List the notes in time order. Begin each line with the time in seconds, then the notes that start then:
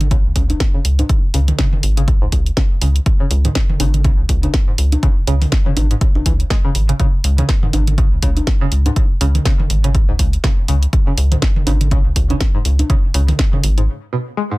Already playing: G#1
0.01 closed hi-hat, mid tom
0.11 C#3, kick, closed hi-hat
0.25 C#2
0.36 C#2 C#3, kick, open hi-hat
0.50 closed hi-hat, high conga
0.60 kick, snare, closed hi-hat
0.74 C#3
0.85 C#2, open hi-hat
0.99 G#2, closed hi-hat, high conga
1.09 kick, closed hi-hat
1.34 C#2 C#3, open hi-hat
1.48 closed hi-hat, mid tom
1.59 C#3, kick, snare, closed hi-hat
1.73 mid tom
1.83 G#1, open hi-hat
1.97 C#3, closed hi-hat
2.08 kick, closed hi-hat
2.22 C#2 G#2
2.32 C#2, kick, open hi-hat
2.46 closed hi-hat
2.57 C#3, kick, snare, closed hi-hat
2.81 C#2 C#3, open hi-hat
2.96 closed hi-hat
3.06 kick, closed hi-hat
3.20 C#3
3.31 C#2, open hi-hat
3.45 G#2, closed hi-hat, mid tom
3.55 kick, snare, closed hi-hat
3.69 mid tom
3.80 G#1 C#3, open hi-hat, high conga
3.94 closed hi-hat, mid tom
4.04 C#3, kick, closed hi-hat
4.19 C#2
4.29 C#2, kick, open hi-hat
4.43 C#3, closed hi-hat, high conga
4.54 kick, snare, closed hi-hat
4.68 G#2
4.78 C#2, open hi-hat
4.92 closed hi-hat, high conga
5.03 C#3, kick, closed hi-hat
5.27 C#2 C#3, open hi-hat
5.42 open hi-hat, mid tom
5.52 kick, snare, closed hi-hat
5.66 C#3, mid tom
5.77 G#1, open hi-hat, high conga
5.91 G#2, closed hi-hat
6.01 kick, closed hi-hat
6.15 G#1, high conga
6.26 C#2 E3, kick, open hi-hat
6.40 closed hi-hat
6.50 G#3, kick, snare, closed hi-hat
6.65 C#3
6.75 G#1, open hi-hat
6.89 C#3, closed hi-hat
7.00 C#3, kick, closed hi-hat
7.24 C#2, open hi-hat
7.38 C#3, closed hi-hat, mid tom
7.49 kick, snare, closed hi-hat
7.63 G#2, mid tom
7.73 G#1, open hi-hat, high conga
7.87 closed hi-hat, mid tom
7.98 C#3, kick, closed hi-hat
8.12 C#2
8.22 C#2 C#3, kick, open hi-hat
8.37 closed hi-hat, high conga
8.47 kick, snare, closed hi-hat
8.61 C#3
8.72 C#2, open hi-hat
8.86 G#2, closed hi-hat, high conga
8.96 kick, closed hi-hat
9.21 C#2 C#3, open hi-hat
9.35 closed hi-hat, mid tom
9.45 C#3, kick, snare, closed hi-hat
9.60 mid tom
9.70 G#1, open hi-hat
9.84 C#3, closed hi-hat
9.95 kick, closed hi-hat
10.09 C#2 G#2
10.19 C#2, kick, open hi-hat
10.33 closed hi-hat
10.44 C#3, kick, snare, closed hi-hat
10.68 C#2 C#3, open hi-hat
10.83 closed hi-hat
10.93 kick, closed hi-hat
11.07 C#3
11.18 C#2, open hi-hat
11.32 G#2, closed hi-hat, mid tom
11.42 kick, snare, closed hi-hat
11.56 mid tom
11.67 G#1 C#3, open hi-hat, high conga
11.81 closed hi-hat, mid tom
11.91 C#3, kick, closed hi-hat
12.06 C#2
12.16 C#2, kick, open hi-hat
12.30 C#3, closed hi-hat, high conga
12.40 kick, snare, closed hi-hat
12.55 G#2
12.65 C#2, open hi-hat
12.79 closed hi-hat, high conga
12.90 C#3, kick, closed hi-hat
13.14 C#2 C#3, open hi-hat
13.28 open hi-hat, mid tom
13.39 kick, snare, closed hi-hat
13.53 C#3, mid tom
13.63 G#1, open hi-hat
13.78 G#2, closed hi-hat
14.13 B2
14.37 G#3
14.51 G#2